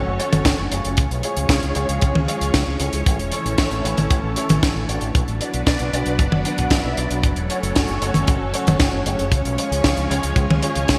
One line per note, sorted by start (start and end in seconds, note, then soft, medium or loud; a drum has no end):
0.00 0.95 F#3 medium
0.00 0.95 A3 medium
0.00 0.16 C#4 loud
0.00 0.95 C#4 medium
0.00 0.16 F#4 medium
0.00 0.16 A4 medium
0.00 0.95 A4 medium
0.00 0.16 C#5 loud
0.00 0.95 C#5 medium
0.06 0.17 F#1 medium
0.19 0.68 C#4 medium
0.19 0.68 F#4 medium
0.19 0.68 A4 medium
0.19 0.68 C#5 loud
0.19 closed hi-hat medium
0.32 0.43 F#1 medium
0.32 closed hi-hat medium
0.32 high tom medium
0.45 0.56 F#1 loud
0.45 kick loud
0.45 snare loud
0.45 closed hi-hat medium
0.58 0.69 F#1 medium
0.71 0.82 F#1 medium
0.71 1.20 C#4 medium
0.71 1.21 F4 medium
0.71 1.20 G#4 medium
0.71 1.20 C#5 medium
0.71 closed hi-hat medium
0.84 0.95 F#1 medium
0.84 closed hi-hat medium
0.97 1.08 C#2 loud
0.97 3.04 F3 medium
0.97 3.04 G#3 medium
0.97 5.11 C#4 medium
0.97 3.04 G#4 medium
0.97 5.11 C#5 medium
0.97 kick loud
0.97 closed hi-hat medium
1.11 1.21 B1 medium
1.11 closed hi-hat soft
1.23 1.47 C#4 medium
1.23 1.46 F4 medium
1.23 1.47 G#4 medium
1.23 1.47 C#5 medium
1.23 closed hi-hat medium
1.37 1.47 C#2 medium
1.37 closed hi-hat medium
1.49 1.60 C#2 loud
1.49 1.73 C#4 loud
1.49 1.73 F4 medium
1.49 1.73 G#4 medium
1.49 1.73 C#5 loud
1.49 kick loud
1.49 snare loud
1.49 closed hi-hat medium
1.63 1.74 C#2 medium
1.63 closed hi-hat soft
1.75 1.87 C#2 medium
1.75 2.25 C#4 loud
1.75 2.25 F4 medium
1.75 2.25 G#4 medium
1.75 2.25 C#5 loud
1.75 closed hi-hat medium
1.89 2.00 C#2 medium
1.89 closed hi-hat medium
2.01 2.13 C#2 loud
2.01 kick loud
2.01 closed hi-hat medium
2.15 2.26 C#2 medium
2.15 high tom medium
2.28 2.77 C#4 medium
2.28 2.77 F4 medium
2.28 2.77 G#4 medium
2.28 2.77 C#5 loud
2.28 closed hi-hat medium
2.41 2.52 C#2 medium
2.41 closed hi-hat medium
2.54 2.65 C#2 loud
2.54 kick loud
2.54 snare loud
2.54 closed hi-hat medium
2.67 2.78 C#2 medium
2.80 2.91 C#2 medium
2.80 3.29 C#4 medium
2.80 3.29 E4 medium
2.80 3.29 A4 medium
2.80 3.29 C#5 medium
2.80 closed hi-hat medium
2.93 3.04 C#2 medium
2.93 closed hi-hat medium
3.06 3.17 A1 loud
3.06 5.13 E3 medium
3.06 5.13 A3 medium
3.06 5.13 A4 medium
3.06 kick loud
3.06 closed hi-hat medium
3.19 3.30 E1 medium
3.19 closed hi-hat medium
3.32 3.55 C#4 medium
3.32 3.55 E4 medium
3.32 3.55 A4 medium
3.32 3.55 C#5 medium
3.32 closed hi-hat medium
3.45 3.56 A1 medium
3.45 closed hi-hat medium
3.58 3.69 A1 loud
3.58 3.81 C#4 loud
3.58 3.81 E4 medium
3.58 3.81 A4 medium
3.58 3.81 C#5 loud
3.58 kick loud
3.58 snare loud
3.58 closed hi-hat medium
3.71 3.82 A1 medium
3.71 closed hi-hat medium
3.84 3.95 A1 medium
3.84 4.33 C#4 loud
3.84 4.33 E4 medium
3.84 4.33 A4 medium
3.84 4.33 C#5 loud
3.84 closed hi-hat medium
3.97 4.08 A1 medium
3.97 closed hi-hat medium
3.97 high tom medium
4.10 4.21 A1 loud
4.10 kick loud
4.10 closed hi-hat medium
4.24 4.34 A1 medium
4.36 4.86 C#4 medium
4.36 4.86 E4 medium
4.36 4.86 A4 medium
4.36 4.86 C#5 loud
4.36 closed hi-hat medium
4.49 4.60 A1 medium
4.49 closed hi-hat medium
4.49 high tom medium
4.63 4.74 A1 loud
4.63 kick loud
4.63 snare loud
4.63 closed hi-hat medium
4.76 4.87 A1 medium
4.89 5.00 A1 medium
4.89 5.38 D4 medium
4.89 5.38 F#4 medium
4.89 5.38 B4 medium
4.89 5.38 D5 medium
4.89 closed hi-hat medium
5.01 5.13 A1 medium
5.01 closed hi-hat medium
5.15 5.26 B1 loud
5.15 9.28 F#3 medium
5.15 7.21 B3 medium
5.15 7.21 D4 medium
5.15 7.21 B4 medium
5.15 7.21 D5 medium
5.15 kick loud
5.15 closed hi-hat medium
5.28 5.39 A1 medium
5.28 closed hi-hat medium
5.41 5.64 D4 medium
5.41 5.64 F#4 medium
5.41 5.64 B4 medium
5.41 5.64 D5 medium
5.41 closed hi-hat medium
5.54 5.65 B1 medium
5.54 closed hi-hat medium
5.66 5.78 B1 loud
5.66 5.90 D4 medium
5.66 5.90 F#4 medium
5.66 5.90 B4 medium
5.66 5.90 D5 loud
5.66 kick loud
5.66 snare loud
5.66 closed hi-hat medium
5.79 5.91 B1 medium
5.79 closed hi-hat medium
5.93 6.04 B1 medium
5.93 6.42 D4 medium
5.93 6.42 F#4 medium
5.93 6.42 B4 medium
5.93 6.42 D5 loud
5.93 closed hi-hat medium
6.06 6.17 B1 medium
6.06 closed hi-hat medium
6.19 6.30 F#1 loud
6.19 kick loud
6.19 closed hi-hat medium
6.32 6.43 F#1 medium
6.32 high tom medium
6.45 6.81 D4 medium
6.45 6.81 F#4 medium
6.45 6.81 B4 medium
6.45 6.81 F#5 loud
6.45 closed hi-hat medium
6.58 6.69 B1 medium
6.58 kick medium
6.58 closed hi-hat medium
6.70 6.82 A1 loud
6.70 kick loud
6.70 snare loud
6.70 closed hi-hat medium
6.84 6.95 B1 medium
6.84 6.94 D4 medium
6.84 6.94 F#4 medium
6.84 6.94 B4 medium
6.84 6.94 E5 medium
6.97 7.08 B1 medium
6.97 7.16 D4 medium
6.97 7.16 F#4 medium
6.97 7.16 B4 medium
6.97 7.16 D5 medium
6.97 closed hi-hat medium
7.10 7.21 B1 medium
7.10 closed hi-hat medium
7.23 7.34 F#1 loud
7.23 9.30 A3 medium
7.23 10.99 C#4 medium
7.23 9.30 A4 medium
7.23 10.99 C#5 medium
7.23 kick loud
7.23 closed hi-hat medium
7.36 7.47 E1 medium
7.36 closed hi-hat medium
7.50 7.73 C#4 medium
7.50 7.73 F#4 medium
7.50 7.73 A4 medium
7.50 7.73 C#5 medium
7.50 closed hi-hat medium
7.63 7.74 F#1 medium
7.63 closed hi-hat medium
7.75 7.87 F#1 loud
7.75 7.99 C#4 loud
7.75 7.99 F#4 medium
7.75 7.99 A4 medium
7.75 7.99 C#5 loud
7.75 kick loud
7.75 snare loud
7.75 closed hi-hat medium
7.88 8.00 F#1 medium
7.88 closed hi-hat soft
8.02 8.13 F#1 medium
8.02 8.51 C#4 loud
8.02 8.51 F#4 medium
8.02 8.51 A4 medium
8.02 8.51 C#5 loud
8.02 closed hi-hat medium
8.14 8.26 F#1 medium
8.14 closed hi-hat medium
8.14 high tom medium
8.27 8.39 F#1 loud
8.27 kick loud
8.27 closed hi-hat medium
8.41 8.52 F#1 medium
8.54 9.03 C#4 medium
8.54 9.03 F#4 medium
8.54 9.03 A4 medium
8.54 9.03 C#5 loud
8.54 closed hi-hat medium
8.67 8.78 F#1 medium
8.67 closed hi-hat medium
8.67 high tom medium
8.80 8.91 F#1 loud
8.80 kick loud
8.80 snare loud
8.80 closed hi-hat medium
8.93 9.04 F#1 medium
9.06 9.17 F#1 medium
9.06 9.55 C#4 medium
9.06 9.55 F4 medium
9.06 9.55 G#4 medium
9.06 9.55 C#5 medium
9.06 closed hi-hat medium
9.19 9.30 F#1 medium
9.19 closed hi-hat medium
9.32 9.43 C#2 loud
9.32 10.99 F3 medium
9.32 10.99 G#3 medium
9.32 10.99 G#4 medium
9.32 kick loud
9.32 closed hi-hat medium
9.45 9.56 B1 medium
9.45 closed hi-hat medium
9.58 9.81 C#4 medium
9.58 9.81 F4 medium
9.58 9.81 G#4 medium
9.58 9.81 C#5 medium
9.58 closed hi-hat medium
9.71 9.82 C#2 medium
9.71 closed hi-hat medium
9.84 9.95 C#2 loud
9.84 10.07 C#4 medium
9.84 10.07 F4 medium
9.84 10.07 G#4 medium
9.84 10.07 C#5 loud
9.84 kick loud
9.84 snare loud
9.84 closed hi-hat medium
9.97 10.08 C#2 medium
9.97 closed hi-hat soft
10.10 10.21 C#2 medium
10.10 10.60 C#4 medium
10.10 10.60 F4 medium
10.10 10.60 G#4 medium
10.10 10.60 C#5 loud
10.10 closed hi-hat medium
10.23 10.34 C#2 medium
10.23 closed hi-hat medium
10.36 10.47 C#2 loud
10.36 kick loud
10.36 closed hi-hat medium
10.50 10.61 C#2 medium
10.50 high tom medium
10.62 10.99 C#4 loud
10.62 10.99 F4 medium
10.62 10.99 G#4 medium
10.62 10.99 C#5 loud
10.62 closed hi-hat medium
10.75 10.87 C#2 medium
10.75 closed hi-hat medium
10.88 10.99 C#2 loud
10.88 kick loud
10.88 snare loud
10.88 closed hi-hat medium